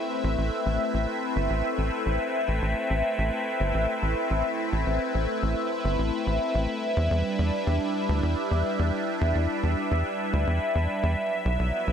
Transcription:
Already playing: analog synth pad A3 C4 E4 B4 E5
0.24 analog synth bass A1
0.38 analog synth bass A1
0.66 analog synth bass A1
0.94 analog synth bass A1
1.36 analog synth bass G1
1.50 analog synth bass A1
1.78 analog synth bass A1
2.06 analog synth bass A1
2.48 analog synth bass A1
2.62 analog synth bass A1
2.90 analog synth bass A1
3.18 analog synth bass A1
3.60 analog synth bass G1
3.74 analog synth bass A1
4.02 analog synth bass A1
4.30 analog synth bass A1
4.72 analog synth bass A1
4.86 analog synth bass A1
5.14 analog synth bass A1
5.42 analog synth bass A1
5.84 analog synth bass G1
5.98 analog synth bass A1
6.26 analog synth bass A1
6.54 analog synth bass A1
6.69 analog synth pad G3 D4 E5
6.97 analog synth bass E2
7.11 analog synth bass E2
7.39 analog synth bass E2
7.67 analog synth bass E2
8.09 analog synth bass D2
8.23 analog synth bass E2
8.51 analog synth bass E2
8.79 analog synth bass E2
9.21 analog synth bass E2
9.35 analog synth bass E2
9.63 analog synth bass E2
9.91 analog synth bass E2
10.33 analog synth bass D2
10.47 analog synth bass E2
10.75 analog synth bass E2
11.03 analog synth bass E2
11.17 analog synth pad F#3 B3 E4 B4
11.45 analog synth bass B1
11.59 analog synth bass B1
11.87 analog synth bass B1

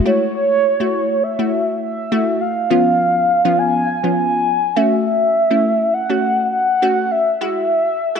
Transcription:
0.06 synth pluck A3 E4 F#4, soft synth lead C#5
0.35 soft synth lead C#5
0.80 synth pluck A3 E4 F#4
1.23 soft synth lead E5
1.39 synth pluck A3 E4 F#4
1.82 soft synth lead E5
2.12 synth pluck A3 E4 F#4
2.41 soft synth lead F5
2.70 synth pluck F3 B3 C#4 F4, soft synth lead F5
3.45 synth pluck F3 B3 C#4 F4
3.59 soft synth lead G#5
4.04 synth pluck F3 B3 C#4 F4
4.17 soft synth lead G#5
4.76 synth pluck A3 C#4 F#4, soft synth lead E5
5.05 soft synth lead E5
5.51 synth pluck A3 C#4 E4
5.94 soft synth lead F#5
6.09 synth pluck A3 C#4 F#4
6.53 soft synth lead F#5
6.82 synth pluck A3 C#4 F#4
7.11 soft synth lead E5
7.41 synth pluck G#3 E4 F#4, soft synth lead E5
8.15 synth pluck G#3 E4 F#4

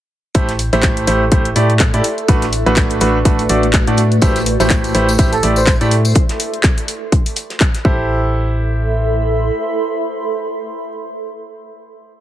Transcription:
0.35 fm bass A1, grand piano A3 E4 G4 A4 C5, ambient pad A4, kick, closed hi-hat
0.49 snare, closed hi-hat
0.59 closed hi-hat, open hi-hat
0.73 fm bass A1, grand piano A3 E4 G4 A4 C5, snare, closed hi-hat
0.83 ambient pad E5, kick, snare, clap, closed hi-hat
0.97 closed hi-hat
1.07 fm bass A1, grand piano A3 E4 G4 A4 C5, snare, closed hi-hat, open hi-hat
1.32 grand piano A3 E4 G4 A4 C5, kick, closed hi-hat
1.45 closed hi-hat
1.56 fm bass A2, grand piano A3 E4 G4 A4 D5, closed hi-hat, open hi-hat
1.70 closed hi-hat
1.79 kick, snare, clap, closed hi-hat
1.94 fm bass A2, grand piano E4 G4 A4 D5, closed hi-hat
2.04 ambient pad A3, closed hi-hat, open hi-hat
2.18 ambient pad D5, closed hi-hat
2.28 fm bass A1, grand piano A3 D4 F#4 A4 B4, kick, closed hi-hat
2.34 ambient pad F#4 B4
2.42 snare, closed hi-hat
2.52 closed hi-hat, open hi-hat
2.66 fm bass A1, grand piano A3 D4 F#4 A4 B4, closed hi-hat
2.76 kick, snare, clap, closed hi-hat
2.90 closed hi-hat
3.00 fm bass A1, grand piano A3 D4 F#4 A4 B4, closed hi-hat, open hi-hat
3.25 fm bass A1, grand piano A3 D4 F#4 A4 B4, kick, closed hi-hat
3.39 open hi-hat
3.49 fm bass A1, grand piano A3 D4 F#4 A4 D5, closed hi-hat, open hi-hat
3.63 closed hi-hat
3.73 kick, clap, closed hi-hat
3.87 fm bass A2, grand piano A3 D4 F#4 A4 D5, closed hi-hat
3.97 closed hi-hat, open hi-hat
4.12 closed hi-hat
4.22 fm bass A1, grand piano A3 E4 G4 A4 C5, ambient pad A4, kick, closed hi-hat, tambourine
4.36 snare, closed hi-hat, tambourine
4.46 closed hi-hat, open hi-hat
4.59 fm bass A1, grand piano A3 E4 G4 A4 C5, snare, closed hi-hat, tambourine
4.63 ambient pad E5 C6
4.70 kick, snare, clap, closed hi-hat, tambourine
4.84 closed hi-hat, tambourine
4.94 fm bass A1, grand piano A3 E4 G4 A4 C5, snare, closed hi-hat, open hi-hat
5.09 tambourine
5.18 fm bass A1, grand piano A3 E4 G4 A4 C5, kick, closed hi-hat, tambourine
5.32 muted trumpet A4, closed hi-hat, tambourine
5.43 fm bass A1, grand piano A3 E4 G4 A4 D5, closed hi-hat, open hi-hat
5.56 muted trumpet C5, closed hi-hat, tambourine
5.67 kick, snare, clap, closed hi-hat, tambourine
5.81 fm bass A2, grand piano A3 E4 G4 A4 D5, closed hi-hat, tambourine
5.91 closed hi-hat, open hi-hat
6.05 closed hi-hat, tambourine
6.15 kick, closed hi-hat
6.29 snare, closed hi-hat
6.40 closed hi-hat, open hi-hat
6.54 closed hi-hat
6.63 kick, snare, clap, closed hi-hat
6.77 closed hi-hat
6.88 closed hi-hat, open hi-hat
7.12 kick, closed hi-hat
7.26 open hi-hat
7.36 closed hi-hat, open hi-hat
7.50 snare, closed hi-hat
7.60 kick, clap, closed hi-hat
7.75 snare, closed hi-hat
7.85 fm bass A1, grand piano E4 G4 A4 C5, ambient pad A4, kick
7.93 ambient pad E5
8.25 ambient pad B5
8.31 ambient pad C6

